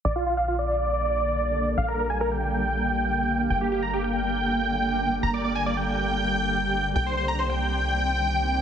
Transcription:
0.05 A#1 D3 G3 A#3 D5
0.16 F4
0.26 F4
0.37 F5
0.48 F4
0.59 D5
1.78 A#1 F5
1.88 A#4
1.99 A#4
2.10 G#5
2.21 A#4
2.31 G5
3.50 G1 D3 G5
3.61 G4
3.72 G4
3.83 A#5
3.93 G4
4.04 G5
5.23 G1 A#5
5.34 D5
5.45 D5
5.55 G#5
5.66 D5
5.77 G5
6.96 C2 D#3 C4 G5
7.06 C5
7.17 C5
7.28 A#5
7.39 C5
7.50 G5

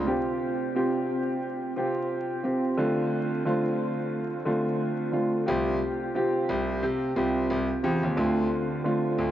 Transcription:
0.06 C3 C4 F4 G4
0.75 C3 C4 F4 G4
1.76 C3 C4 F4 G4
2.43 C3 C4 F4 G4
2.77 D3 A3 C4 F4
3.45 D3 A3 C4 F4
4.45 D3 A3 C4 F4
5.12 D3 A3 C4 F4
5.46 C2 C3 C4 F4 G4
6.14 C3 C4 F4 G4
6.49 C2
6.83 C3
7.15 C2 C3 C4 F4 G4
7.50 C2
7.82 E2 C3 C4 F4 G4
8.03 D#2
8.17 D2 D3 A3 C4 F4
8.84 D3 A3 C4 F4
9.18 D2

